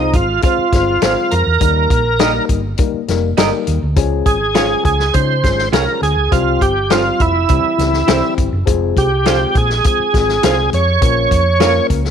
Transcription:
Already playing: C2 G#3 C4 D#4 F4 C5
0.13 G#1 F4, kick, closed hi-hat
0.42 G#3 C4 F4 C5, kick, closed hi-hat
0.58 muted fingered electric bass stroke
0.73 G1 G#3 C4 F4 C5, kick, snare, closed hi-hat
1.02 G#1 G#3 C4 F4 G#4 C5 F5, snare, closed hi-hat
1.31 F2 A#4, closed hi-hat
1.47 E2
1.60 D#2 G3 A#3 D#4 A#4, kick, closed hi-hat
1.90 A#1, kick, closed hi-hat
2.19 G3 A#3 D#4 G4 A#4 D#5, snare, closed hi-hat
2.49 G1, kick, closed hi-hat
2.78 G3 A#3 D#4 A#4, kick, closed hi-hat
2.94 muted fingered electric bass stroke
3.08 F1 G3 A#3 D#4 A#4, snare, closed hi-hat
3.37 G1 G3 A#3 D#4 G4 A#4 D#5, snare, closed hi-hat
3.67 D#2, closed hi-hat
3.82 D2
3.96 C#2 F3 G#3 C#4 G#4, kick, closed hi-hat
4.26 G#1 G#4, kick, closed hi-hat
4.55 F3 G#3 C#4 F4 G#4 C#5 F5, snare, closed hi-hat
4.85 C#2 G#4, kick, closed hi-hat
4.99 snare
5.14 C#3 F3 G#3 C#4 D#4 C5, kick, closed hi-hat
5.43 G#1 F3 G#3 C#4 G#4, kick, snare, closed hi-hat
5.58 snare
5.72 C2 F3 G#3 C#4 F4 G#4 A#4 C#5 F5, snare, closed hi-hat
6.02 D2 G#4, closed hi-hat
6.16 C#2
6.31 C2 F3 G3 C4 F4 G4, kick, closed hi-hat
6.61 G1 G4, kick, closed hi-hat
6.90 F3 G3 C4 F4 G4 C5 F5, snare, closed hi-hat
7.20 F1 E4, kick, closed hi-hat
7.48 C2 E3 G3 C4 G4, kick, closed hi-hat
7.77 C#2 E3 G3 C4 G4, snare, closed hi-hat
7.93 snare
8.07 C2 E3 G3 C4 E4 G4 C5 E5, snare, closed hi-hat
8.38 G1, kick, closed hi-hat
8.52 F#1
8.65 F1 F3 G#3 C4 G#4, kick, closed hi-hat
8.97 C2 G4, kick, closed hi-hat
9.25 F3 G#3 C4 F4 G#4 C5 F5, snare, closed hi-hat
9.55 A#1 G#4, kick, closed hi-hat
9.70 snare
9.84 F3 G#3 C4 G#4, kick, closed hi-hat
9.99 muted fingered electric bass stroke
10.12 G#1 F3 G#3 C4 G#4, kick, snare, closed hi-hat
10.29 snare
10.42 C2 F3 G#3 C4 F4 G#4 C5 F5, snare, closed hi-hat
10.73 F2 C#5, closed hi-hat
11.01 A#1 F3 A#3 C#4 A#4, kick, closed hi-hat
11.31 F2, kick, closed hi-hat
11.60 F3 A#3 C#4 F4 A#4 C#5 F5, snare, closed hi-hat
11.90 C#2, kick, closed hi-hat
12.05 snare

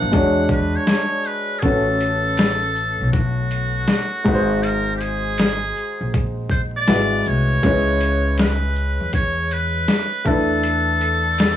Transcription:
Already playing: A#3 D4 E4 C5 F#5
0.02 G1
0.12 E2 G#3 D4 F#4 C#5, kick, closed hi-hat
0.49 B4, kick, closed hi-hat, shaker
0.76 C#5
0.87 snare, closed hi-hat
1.24 B4, shaker
1.59 A1 A3 C#4 G#4 A4, kick, closed hi-hat
1.64 F#4 B4
2.00 closed hi-hat, shaker
2.37 snare, closed hi-hat
2.76 shaker
3.01 B1
3.13 F#4, kick, closed hi-hat
3.51 closed hi-hat, shaker
3.88 snare, closed hi-hat
4.24 G#1 G#3 D#4 F#4 B4, kick, shaker
4.34 C5
4.63 A#4, closed hi-hat
4.96 G4
5.01 G#4, closed hi-hat, shaker
5.38 snare, closed hi-hat
5.76 shaker
6.01 A#1
6.14 kick, closed hi-hat
6.50 C5, kick, closed hi-hat, shaker
6.77 D5
6.88 G#1 G#3 E4 F#4 B4, snare, closed hi-hat
7.25 C2 C#5, shaker
7.63 C#2 G#3 C#4 E4 B4, kick, closed hi-hat
8.01 closed hi-hat, shaker
8.38 B4, snare, closed hi-hat
8.76 shaker
9.00 E2
9.13 C#5, kick, closed hi-hat
9.51 B4, closed hi-hat, shaker
9.88 snare, closed hi-hat
10.25 E2 A3 D4 E4 A4 B4, kick, shaker
10.63 closed hi-hat
11.01 closed hi-hat, shaker
11.38 snare, closed hi-hat

